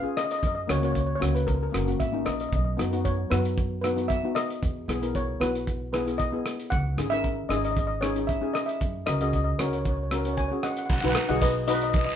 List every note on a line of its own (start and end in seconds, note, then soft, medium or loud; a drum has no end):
0.02 0.42 C#4 medium
0.02 0.42 F4 medium
0.02 0.42 G#4 medium
0.17 0.24 D#5 medium
0.17 cross-stick medium
0.17 closed hi-hat medium
0.25 0.31 D#5 medium
0.31 0.38 D#5 medium
0.31 closed hi-hat medium
0.39 0.65 F#2 medium
0.39 0.46 D#5 medium
0.39 kick loud
0.43 0.54 D#5 medium
0.43 closed hi-hat medium
0.55 0.62 D#5 medium
0.68 1.13 C#2 medium
0.68 0.76 A#3 medium
0.68 0.77 C#4 medium
0.68 0.77 F#4 medium
0.68 0.76 C#5 medium
0.68 cross-stick medium
0.68 closed hi-hat medium
0.77 0.83 C#5 medium
0.82 1.06 A#3 medium
0.82 1.06 C#4 soft
0.82 1.07 F#4 medium
0.82 0.91 C#5 medium
0.82 closed hi-hat soft
0.92 0.99 C#5 medium
0.92 kick medium
0.92 closed hi-hat medium
1.00 1.05 C#5 medium
1.07 1.14 C#5 medium
1.15 1.21 C#5 medium
1.20 1.66 C#2 medium
1.20 1.52 A#3 medium
1.20 1.53 C#4 medium
1.20 1.53 F#4 medium
1.20 1.30 C#5 medium
1.20 cross-stick medium
1.20 closed hi-hat medium
1.35 1.48 B4 medium
1.35 closed hi-hat medium
1.47 1.53 A#4 medium
1.47 kick loud
1.47 closed hi-hat medium
1.55 1.62 A#4 soft
1.63 1.68 A#4 medium
1.70 1.81 A#3 medium
1.70 1.82 C#4 medium
1.70 1.77 A#4 soft
1.74 1.98 F#1 medium
1.74 1.82 F#4 medium
1.74 cross-stick medium
1.74 closed hi-hat medium
1.78 1.84 A#4 medium
1.85 2.02 A#3 medium
1.85 2.02 C#4 medium
1.85 2.03 F#4 medium
1.85 1.93 A#4 soft
1.85 closed hi-hat soft
2.00 2.24 G#1 medium
2.00 2.24 E5 medium
2.00 kick medium
2.00 closed hi-hat medium
2.12 2.52 A#3 medium
2.12 2.52 C#4 medium
2.12 2.52 D#4 medium
2.26 2.50 A#1 medium
2.26 2.32 D#5 medium
2.26 cross-stick medium
2.26 closed hi-hat medium
2.33 2.40 D#5 soft
2.40 2.47 D#5 medium
2.40 closed hi-hat soft
2.49 2.74 B1 medium
2.49 2.55 D#5 soft
2.49 kick loud
2.49 closed hi-hat medium
2.56 2.63 D#5 medium
2.65 2.71 D#5 soft
2.77 3.23 F#2 medium
2.77 2.86 B3 medium
2.77 2.86 D#4 medium
2.77 2.87 F#4 medium
2.77 cross-stick medium
2.77 closed hi-hat medium
2.91 3.15 B3 medium
2.91 3.16 D#4 medium
2.91 3.16 F#4 medium
2.91 closed hi-hat soft
3.05 3.32 C#5 medium
3.05 kick medium
3.05 closed hi-hat medium
3.30 4.19 F#2 medium
3.30 3.62 B3 medium
3.30 3.63 D#4 medium
3.30 3.63 F#4 medium
3.30 3.80 B4 medium
3.30 cross-stick medium
3.30 closed hi-hat medium
3.45 closed hi-hat medium
3.58 kick loud
3.58 closed hi-hat soft
3.81 3.91 B3 medium
3.81 3.92 D#4 medium
3.81 3.92 F#4 medium
3.81 4.07 B4 medium
3.81 cross-stick medium
3.81 closed hi-hat medium
3.96 4.12 B3 medium
3.96 4.12 D#4 soft
3.96 4.13 F#4 medium
3.96 closed hi-hat soft
4.08 4.36 E5 medium
4.08 kick medium
4.08 closed hi-hat medium
4.23 4.62 B3 medium
4.23 4.62 D#4 medium
4.23 4.63 F#4 medium
4.35 4.84 D#5 medium
4.35 cross-stick medium
4.35 closed hi-hat medium
4.50 closed hi-hat soft
4.63 4.85 E2 medium
4.63 kick loud
4.63 closed hi-hat medium
4.88 5.32 B1 medium
4.88 4.96 B3 medium
4.88 4.97 E4 medium
4.88 4.97 G#4 medium
4.88 cross-stick medium
4.88 closed hi-hat medium
5.02 5.25 B3 medium
5.02 5.26 E4 medium
5.02 5.26 A#4 medium
5.02 closed hi-hat medium
5.15 5.39 C#5 medium
5.15 kick medium
5.15 closed hi-hat medium
5.40 6.29 B1 medium
5.40 5.72 B3 medium
5.40 5.72 E4 medium
5.40 5.73 F#4 medium
5.40 5.92 B4 medium
5.40 cross-stick medium
5.40 closed hi-hat medium
5.55 closed hi-hat medium
5.67 kick medium
5.67 closed hi-hat medium
5.93 6.01 B3 medium
5.93 6.01 E4 medium
5.93 6.02 G#4 medium
5.93 6.20 B4 medium
5.93 cross-stick medium
5.93 closed hi-hat medium
6.06 6.22 B3 medium
6.06 6.22 E4 medium
6.06 6.22 G#4 medium
6.06 closed hi-hat soft
6.18 6.56 D#5 medium
6.18 kick medium
6.18 closed hi-hat soft
6.32 6.71 B3 medium
6.32 6.72 E4 medium
6.32 6.72 G#4 medium
6.46 cross-stick medium
6.46 closed hi-hat medium
6.59 closed hi-hat soft
6.70 6.94 C#2 medium
6.70 7.12 F#5 medium
6.70 kick loud
6.70 closed hi-hat soft
6.97 7.42 G#1 medium
6.97 7.06 C#4 medium
6.97 7.06 D#4 medium
6.97 7.06 G#4 medium
6.97 cross-stick medium
6.97 closed hi-hat medium
7.10 7.35 C#4 medium
7.10 7.35 D#4 medium
7.10 7.35 A#4 medium
7.10 7.51 E5 medium
7.10 closed hi-hat soft
7.24 kick medium
7.24 closed hi-hat soft
7.49 8.38 G#1 medium
7.49 7.81 C#4 medium
7.49 7.82 D#4 medium
7.49 7.82 G#4 medium
7.49 7.55 D#5 medium
7.49 cross-stick medium
7.49 closed hi-hat medium
7.56 7.64 D#5 medium
7.64 7.70 D#5 medium
7.64 closed hi-hat medium
7.71 7.78 D#5 medium
7.77 7.86 D#5 medium
7.77 kick medium
7.77 closed hi-hat medium
7.87 7.94 D#5 medium
8.01 8.10 C#4 medium
8.01 8.11 D#4 medium
8.01 8.11 G#4 medium
8.01 8.29 C#5 medium
8.01 cross-stick medium
8.01 closed hi-hat medium
8.15 8.31 C#4 medium
8.15 8.31 D#4 medium
8.15 8.32 G#4 medium
8.15 closed hi-hat soft
8.27 8.55 E5 medium
8.27 kick medium
8.27 closed hi-hat soft
8.42 8.81 C#4 medium
8.42 8.81 D#4 medium
8.42 8.81 G#4 medium
8.54 8.68 D#5 medium
8.54 cross-stick medium
8.54 closed hi-hat medium
8.66 9.07 E5 medium
8.66 closed hi-hat soft
8.81 9.03 F#2 medium
8.81 kick medium
8.81 closed hi-hat medium
9.06 9.51 C#2 medium
9.06 9.15 C#4 medium
9.06 9.15 F#4 soft
9.06 9.16 A#4 medium
9.06 9.12 D#5 medium
9.06 cross-stick medium
9.06 closed hi-hat medium
9.13 9.20 D#5 medium
9.21 9.44 C#4 medium
9.21 9.44 F#4 medium
9.21 9.45 G#4 medium
9.21 9.28 D#5 medium
9.21 closed hi-hat medium
9.29 9.34 D#5 medium
9.33 9.43 D#5 medium
9.33 kick medium
9.33 closed hi-hat medium
9.44 9.52 D#5 medium
9.59 10.47 C#2 medium
9.59 9.91 C#4 medium
9.59 9.91 F#4 medium
9.59 9.92 A#4 medium
9.59 9.65 C#5 medium
9.59 cross-stick medium
9.59 closed hi-hat medium
9.66 9.73 C#5 soft
9.73 9.81 C#5 soft
9.73 closed hi-hat medium
9.82 9.88 C#5 soft
9.82 kick loud
9.82 closed hi-hat medium
9.89 9.95 C#5 soft
9.97 10.02 C#5 soft
10.03 10.10 C#5 soft
10.11 10.20 C#4 medium
10.11 10.20 F#4 medium
10.11 10.21 A#4 medium
10.11 10.18 C#5 soft
10.11 cross-stick medium
10.11 closed hi-hat medium
10.19 10.25 C#5 soft
10.25 10.40 C#4 medium
10.25 10.41 F#4 medium
10.25 10.32 C#5 soft
10.25 10.41 C#5 medium
10.25 closed hi-hat medium
10.34 10.37 C#5 medium
10.34 10.64 G#5 medium
10.34 closed hi-hat medium
10.38 10.40 C#5 medium
10.38 10.47 C#5 soft
10.38 kick medium
10.48 10.90 C#4 medium
10.48 10.90 F#4 medium
10.48 10.56 C#5 medium
10.53 10.91 G#4 medium
10.63 10.71 D#5 medium
10.63 10.69 F#5 medium
10.63 cross-stick medium
10.63 closed hi-hat medium
10.71 10.77 F#5 medium
10.77 10.85 F#5 medium
10.77 closed hi-hat medium
10.86 10.92 F#5 medium
10.86 kick loud
10.86 crash loud
10.90 11.01 B1 medium
10.90 11.00 F#5 medium
10.90 long guiro medium
11.01 11.14 B1 medium
11.01 11.19 D#4 medium
11.01 11.19 F#4 medium
11.01 11.19 B4 medium
11.01 11.08 F#5 medium
11.09 11.14 F#5 medium
11.15 11.23 F#5 medium
11.15 cross-stick medium
11.15 closed hi-hat medium
11.28 12.06 B1 medium
11.28 11.53 D#4 medium
11.28 11.53 F#4 medium
11.28 11.54 G#4 medium
11.28 11.41 D#5 medium
11.28 11.41 F#5 medium
11.28 closed hi-hat soft
11.41 11.67 B4 medium
11.41 11.66 D#5 medium
11.41 kick medium
11.41 closed hi-hat medium
11.41 short guiro medium
11.67 11.99 D#4 medium
11.67 12.00 F#4 medium
11.67 11.76 B4 medium
11.67 12.00 B4 medium
11.67 11.74 D#5 medium
11.67 closed hi-hat medium
11.67 short guiro medium
11.75 11.82 D#5 medium
11.82 11.89 D#5 medium
11.82 closed hi-hat medium
11.90 11.97 D#5 medium
11.90 closed hi-hat medium
11.94 12.04 D#5 medium
11.94 kick loud
11.94 long guiro medium
12.05 12.13 D#5 medium